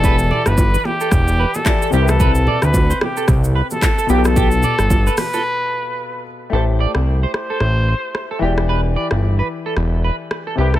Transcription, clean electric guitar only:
X:1
M:4/4
L:1/16
Q:"Swing 16ths" 1/4=111
K:Am
V:1 name="Clean electric guitar"
B z d z2 B z A z2 B z2 A G z | B z d z2 c z A z2 B z2 A G z | G z d z2 B z A z8 | A z d z2 c z A z2 c z2 A G z |
B z d z2 B z A z2 B z2 A G z |]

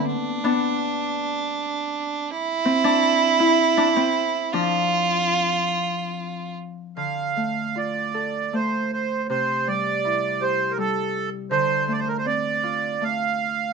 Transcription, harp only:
X:1
M:3/4
L:1/16
Q:1/4=79
K:Dm
V:1 name="Harp"
[D,=B,]2 [B,D]8 z2 | z2 C D3 E2 D C3 | [F,D]8- [F,D]2 z2 | D,2 A,2 F2 A2 A,4 |
C,2 G,2 E2 G2 G,4 | D,2 A,2 C2 F2 A,4 |]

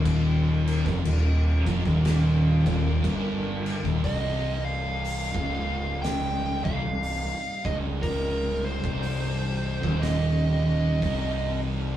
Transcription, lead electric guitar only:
X:1
M:4/4
L:1/8
Q:"Swing" 1/4=60
K:Eblyd
V:1 name="Lead electric guitar"
z8 | e f3 g f2 e | B c3 e3 z |]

